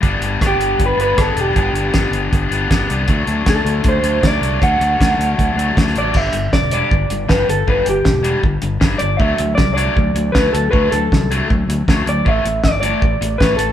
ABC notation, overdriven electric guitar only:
X:1
M:4/4
L:1/8
Q:1/4=157
K:G
V:1 name="Overdriven electric guitar" clef=bass
[G,,D,G,B,D] [G,B,D] [D,G,B,D]3 [G,B,D] [G,,D,G,B,D] [G,B,D] | [G,,D,G,B,D] [G,B,D] [D,G,B,D]3 [G,B,D] [G,,D,G,B,D] [G,B,D] | [D,F,A,D] [F,A,D] [D,F,A,D]3 [F,A,D] [D,F,A,D] [F,A,D] | [D,F,A,D] [F,A,D] [D,F,A,D]3 [F,A,D] [D,F,A,D] [F,A,D] |
[G,,D,G,] [G,,D,] [G,,D,] [G,,D,G,] [G,,D,] [G,,D,] [G,,D,G,] [G,,D,] | [G,,D,G,] [G,,D,] [G,,D,] [G,,D,G,] [G,,D,] [G,,D,] [G,,D,G,] [G,,D,] | [D,F,A,] [D,F,] [D,F,] [D,F,A,] [D,F,] [D,F,] [D,F,A,] [D,F,] | [D,F,A,] [D,F,] [D,F,] [D,F,A,] [D,F,] [D,F,] [D,F,A,] [D,F,] |
[A,,E,A,] [A,,E,] [A,,E,] [A,,E,A,] [A,,E,] [A,,E,] [A,,E,A,] [A,,E,] |]